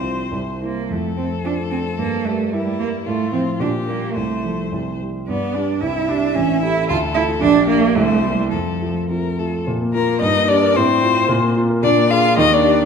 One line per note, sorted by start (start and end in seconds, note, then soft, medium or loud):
0.00 0.30 C2 medium
0.00 0.32 C4 medium
0.00 0.29 F4 soft
0.00 0.61 C5 medium
0.00 0.30 C5 soft
0.32 0.87 C2 medium
0.32 0.40 G3 medium
0.61 0.93 A#3 medium
0.61 0.87 E4 soft
0.61 0.87 C5 soft
0.89 1.95 F2 soft
0.89 1.16 A3 medium
0.89 2.48 A4 medium
1.17 1.42 A3 soft
1.17 1.25 C4 medium
1.17 1.42 C5 soft
1.44 1.53 D4 medium
1.44 1.69 F4 soft
1.44 1.69 C5 soft
1.71 1.96 A3 soft
1.71 1.79 C4 medium
1.71 1.96 C5 soft
1.98 3.02 G2 soft
1.98 2.27 A#3 medium
2.25 2.49 G3 soft
2.25 2.54 A3 medium
2.25 2.50 A#4 soft
2.52 2.79 G3 medium
2.52 2.76 E4 soft
2.52 3.08 E4 medium
2.52 2.76 A#4 soft
2.79 3.03 G3 soft
2.79 2.87 A#3 medium
2.79 3.03 A#4 soft
3.06 3.58 A2 medium
3.06 3.32 A3 medium
3.06 3.62 F4 medium
3.32 3.57 F3 soft
3.32 3.40 C4 medium
3.32 3.58 C5 soft
3.60 4.14 A#2 medium
3.60 3.69 D4 medium
3.60 4.15 G4 medium
3.87 4.13 G3 soft
3.87 4.16 A#3 medium
3.87 4.13 A#4 soft
4.15 4.70 C2 soft
4.15 4.71 A3 medium
4.15 4.98 C5 soft
4.44 4.69 F3 soft
4.44 4.69 A4 soft
4.72 5.26 C2 soft
5.00 5.25 G3 soft
5.00 5.25 G4 soft
5.27 5.81 G2 soft
5.27 5.56 B3 medium
5.27 5.79 D5 medium
5.54 5.80 G3 soft
5.54 5.82 D4 medium
5.54 5.80 G4 soft
5.80 6.34 C2 medium
5.80 6.10 E4 medium
5.80 6.87 E5 medium
6.08 6.33 G3 soft
6.08 6.36 D4 medium
6.08 6.33 G4 soft
6.34 6.87 A1 medium
6.34 6.62 C#4 medium
6.62 6.87 A3 soft
6.62 6.88 E4 medium
6.62 6.87 G4 soft
6.88 7.40 D2 medium
6.88 6.96 F4 loud
6.88 7.44 A4 medium
7.14 7.39 A3 soft
7.14 7.22 E4 loud
7.14 7.39 F4 medium
7.41 7.94 A#1 medium
7.41 7.67 D4 loud
7.41 7.96 G4 medium
7.68 7.96 A#3 medium
7.68 7.93 A#3 soft
7.68 7.93 G4 medium
7.95 8.50 C2 medium
7.95 8.24 A3 medium
7.95 8.50 C5 medium
8.22 8.52 G3 medium
8.22 8.49 A#3 soft
8.22 8.49 E4 soft
8.51 9.64 F2 medium
8.51 9.09 F3 medium
8.51 9.03 A4 soft
8.80 9.07 A3 soft
8.80 9.07 F4 soft
9.09 9.36 C4 soft
9.09 9.36 F4 soft
9.09 9.40 A#4 medium
9.39 9.64 A3 soft
9.39 9.64 F4 soft
9.39 9.67 A4 soft
9.67 10.20 A#2 medium
9.81 10.03 A#3 medium
9.93 10.22 A#3 medium
9.93 10.16 F4 medium
9.93 10.20 A#4 medium
10.08 10.22 A#4 medium
10.21 10.74 G2 medium
10.21 10.49 D#4 medium
10.21 10.50 D#5 loud
10.35 10.57 A#3 medium
10.47 10.77 D4 medium
10.47 10.70 G4 medium
10.47 10.78 D5 loud
10.63 10.76 A#4 medium
10.75 11.28 A2 medium
10.75 11.56 C4 medium
10.75 11.56 C5 loud
10.89 11.11 C4 medium
11.03 11.24 F4 medium
11.16 11.30 C5 medium
11.29 11.81 A#2 medium
11.42 11.64 A#3 medium
11.56 11.78 F4 medium
11.70 11.83 A#4 medium
11.82 12.36 A#2 medium
11.82 12.08 D4 loud
11.82 12.12 D5 loud
11.97 12.18 A#3 medium
12.10 12.37 F4 loud
12.10 12.32 G#4 medium
12.10 12.37 F5 loud
12.23 12.37 A#4 medium
12.37 12.85 D#2 medium
12.37 12.44 D#4 loud
12.37 12.55 D#5 loud
12.51 12.73 A#3 medium
12.51 12.85 D4 medium
12.51 12.85 D5 loud
12.64 12.85 G4 medium
12.78 12.85 A#4 medium